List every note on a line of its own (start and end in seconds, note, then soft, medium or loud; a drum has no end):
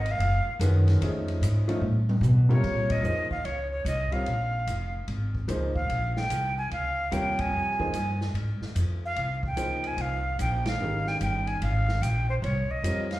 0.00 0.18 G#1 medium
0.00 0.13 D#5 medium
0.06 ride soft
0.11 0.53 F5 medium
0.19 0.44 F#1 medium
0.19 ride medium
0.45 muted upright bass stroke soft
0.59 0.99 F#2 loud
0.59 1.01 D#3 medium
0.59 1.01 G#3 medium
0.59 1.01 C#4 medium
0.59 1.02 F#4 medium
0.59 1.02 B4 medium
0.59 hi-hat pedal medium
0.59 ride medium
0.88 snare soft
0.88 ride soft
1.01 1.41 F2 loud
1.01 1.63 F3 medium
1.01 1.64 A3 medium
1.01 1.64 C#4 medium
1.01 1.64 D#4 medium
1.01 1.64 G#4 medium
1.01 ride medium
1.28 ride medium
1.41 1.81 G#2 medium
1.41 hi-hat pedal medium
1.41 ride medium
1.68 1.81 F3 medium
1.68 1.81 A3 medium
1.68 1.81 C#4 medium
1.68 1.81 D#4 medium
1.68 1.81 F4 medium
1.68 ride medium
1.81 2.20 A2 medium
1.81 high tom soft
2.09 high tom medium
2.21 2.62 B2 loud
2.21 floor tom medium
2.21 hi-hat pedal medium
2.49 3.01 C3 medium
2.49 3.01 G3 medium
2.49 3.02 F4 medium
2.49 3.02 A#4 medium
2.49 2.93 C#5 loud
2.49 3.02 C#5 medium
2.49 floor tom medium
2.63 3.02 A#2 medium
2.63 kick medium
2.63 crash medium
2.90 3.31 D#5 medium
2.90 kick medium
2.90 ride medium
3.03 3.28 F2 medium
3.03 3.27 F3 medium
3.03 3.28 A#3 soft
3.03 3.28 D#4 soft
3.03 3.28 G#4 soft
3.03 3.29 C5 soft
3.03 hi-hat pedal medium
3.30 3.47 F5 medium
3.30 muted upright bass stroke soft
3.30 kick soft
3.44 3.84 C#2 medium
3.44 3.71 C#5 medium
3.44 ride medium
3.71 3.85 C#5 medium
3.85 4.10 C2 medium
3.85 4.14 D#5 medium
3.85 hi-hat pedal medium
3.85 ride medium
4.12 4.25 G3 medium
4.12 4.25 C4 soft
4.12 4.26 F4 medium
4.12 4.26 A#4 soft
4.12 4.26 C#5 medium
4.12 4.94 F5 medium
4.12 muted upright bass stroke soft
4.12 ride soft
4.26 4.66 A#1 medium
4.26 ride medium
4.67 5.07 F1 medium
4.67 hi-hat pedal medium
4.67 ride medium
5.08 5.47 G#1 medium
5.08 ride soft
5.35 kick soft
5.48 5.88 C#2 loud
5.48 5.72 F3 medium
5.48 5.73 A#3 medium
5.48 5.73 D#4 medium
5.48 5.73 G#4 medium
5.48 5.73 C5 medium
5.48 hi-hat pedal medium
5.48 ride medium
5.75 6.13 F5 medium
5.75 kick medium
5.89 6.29 A#1 medium
5.89 ride medium
6.16 6.55 G5 medium
6.16 snare soft
6.30 6.70 C2 medium
6.30 hi-hat pedal medium
6.30 ride medium
6.58 6.71 G#5 medium
6.70 7.11 C#2 medium
6.70 7.14 F5 medium
6.70 ride medium
7.11 7.51 D#2 medium
7.11 7.74 C3 medium
7.11 7.74 G3 medium
7.11 7.74 F4 medium
7.11 7.75 A#4 medium
7.11 7.75 C#5 medium
7.11 7.42 G5 medium
7.11 hi-hat pedal medium
7.11 ride medium
7.39 8.21 G#5 medium
7.39 kick medium
7.39 ride medium
7.52 7.92 F2 medium
7.79 7.92 F3 medium
7.79 7.92 A#3 medium
7.79 7.93 D#4 medium
7.79 7.93 G#4 medium
7.79 7.93 C5 medium
7.79 kick medium
7.93 8.33 G2 medium
7.93 hi-hat pedal soft
7.93 ride medium
8.21 snare soft
8.33 8.59 G#2 medium
8.33 ride medium
8.61 muted upright bass stroke soft
8.61 snare soft
8.75 9.15 F2 loud
8.75 hi-hat pedal medium
8.75 ride medium
9.05 9.42 F5 medium
9.16 9.56 C2 medium
9.16 ride medium
9.43 9.89 G5 medium
9.43 kick soft
9.56 9.96 C#2 medium
9.56 10.19 F3 medium
9.56 10.19 A#3 soft
9.56 10.19 D#4 soft
9.56 10.20 G#4 soft
9.56 10.20 C5 medium
9.56 hi-hat pedal medium
9.56 ride medium
9.84 10.03 G#5 medium
9.84 ride soft
9.97 10.37 C2 medium
9.97 ride medium
10.01 10.40 F5 medium
10.39 10.78 A#1 medium
10.39 10.64 G5 medium
10.39 hi-hat pedal medium
10.39 ride medium
10.66 11.10 F5 medium
10.66 snare medium
10.66 ride medium
10.80 11.19 G#1 medium
10.80 11.94 D#3 medium
10.80 11.94 G#3 soft
10.80 11.94 C#4 soft
10.80 11.94 G4 medium
10.80 11.95 A#4 medium
11.07 11.20 G5 medium
11.07 snare soft
11.21 11.60 G1 medium
11.21 11.49 G5 medium
11.21 hi-hat pedal medium
11.21 ride medium
11.47 11.61 G#5 medium
11.47 ride soft
11.61 12.01 G#1 medium
11.61 12.04 F5 medium
11.61 ride medium
11.88 snare soft
12.01 12.41 A#1 medium
12.01 12.29 G5 medium
12.01 hi-hat pedal medium
12.01 ride medium
12.30 12.36 C5 medium
12.42 12.67 C2 medium
12.42 12.72 C#5 medium
12.42 ride medium
12.69 13.11 D#5 medium
12.69 muted upright bass stroke soft
12.82 13.20 F2 medium
12.82 13.07 G3 medium
12.82 13.08 C4 medium
12.82 13.08 F4 medium
12.82 13.08 A#4 medium
12.82 13.08 C#5 medium
12.82 hi-hat pedal medium
12.82 ride medium
13.11 13.20 F5 medium
13.11 snare soft
13.11 ride soft